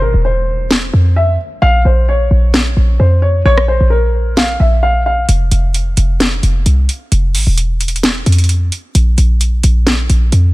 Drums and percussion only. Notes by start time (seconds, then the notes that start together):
0.71 snare
2.54 snare
3.58 cross-stick
4.37 snare
5.29 closed hi-hat
5.51 closed hi-hat
5.74 closed hi-hat
5.97 closed hi-hat
6.20 snare, closed hi-hat
6.43 closed hi-hat
6.66 closed hi-hat
6.89 closed hi-hat
7.12 closed hi-hat
7.35 open hi-hat
7.58 closed hi-hat
7.81 closed hi-hat
7.88 closed hi-hat
7.96 closed hi-hat
8.03 snare, closed hi-hat
8.26 closed hi-hat
8.32 closed hi-hat
8.38 closed hi-hat
8.44 closed hi-hat
8.49 closed hi-hat
8.72 closed hi-hat
8.95 closed hi-hat
9.18 closed hi-hat
9.41 closed hi-hat
9.63 closed hi-hat
9.87 snare, closed hi-hat
10.10 closed hi-hat
10.32 closed hi-hat